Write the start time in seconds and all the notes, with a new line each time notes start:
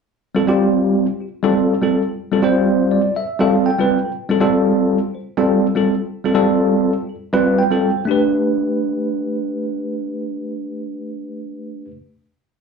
0.35 G3 C4 F4 A4
0.47 G3 C4 F4 G4
1.20 F4 G4
1.43 G3 C4 F4 A4
1.82 G3 C4 F4 A4
2.09 F4 A4
2.32 G3 C4 F4 A4
2.42 G3 C4 F4 C5
2.91 D5
3.15 F4 A4 E5
3.39 G3 C4 F4 A4 F5
3.66 G5
3.78 G3 C4 F4 B4
4.03 F4 A4
4.29 G3 C4 F4 A4
4.40 G3 C4 F4 A4
5.14 F4 C5
5.37 G3 C4 F4 A4
5.75 G3 C4 F4 A4
6.00 F4 A4
6.24 G3 C4 F4 A4
6.34 G3 C4 F4 A4
7.07 F4 A4
7.33 G3 C4 F4 B4
7.58 G5
7.70 G3 C4 F4 A4
7.96 F4 C5
8.05 A3 D4 G4
8.11 B4